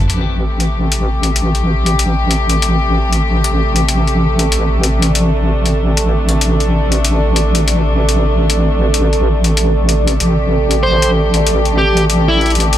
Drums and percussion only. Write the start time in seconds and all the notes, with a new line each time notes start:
0.10 closed hi-hat
0.60 closed hi-hat
0.92 closed hi-hat
1.23 closed hi-hat
1.36 closed hi-hat
1.55 closed hi-hat
1.86 closed hi-hat
1.99 closed hi-hat
2.31 closed hi-hat
2.50 closed hi-hat
2.62 closed hi-hat
3.13 closed hi-hat
3.44 closed hi-hat
3.76 closed hi-hat
3.89 closed hi-hat
4.08 closed hi-hat
4.39 closed hi-hat
4.52 closed hi-hat
4.83 closed hi-hat
5.02 closed hi-hat
5.15 closed hi-hat
5.66 closed hi-hat
5.97 closed hi-hat
6.29 closed hi-hat
6.41 closed hi-hat
6.60 closed hi-hat
6.92 closed hi-hat
7.05 closed hi-hat
7.36 closed hi-hat
7.55 closed hi-hat
7.68 closed hi-hat
8.09 closed hi-hat
8.50 closed hi-hat
8.94 closed hi-hat
9.13 closed hi-hat
9.44 closed hi-hat
9.57 closed hi-hat
9.89 closed hi-hat
10.07 closed hi-hat
10.20 closed hi-hat
10.71 closed hi-hat
11.02 closed hi-hat
11.34 closed hi-hat
11.47 closed hi-hat
11.65 closed hi-hat
11.97 closed hi-hat
12.10 closed hi-hat
12.41 closed hi-hat
12.46 closed hi-hat
12.50 closed hi-hat
12.55 closed hi-hat
12.60 closed hi-hat
12.73 closed hi-hat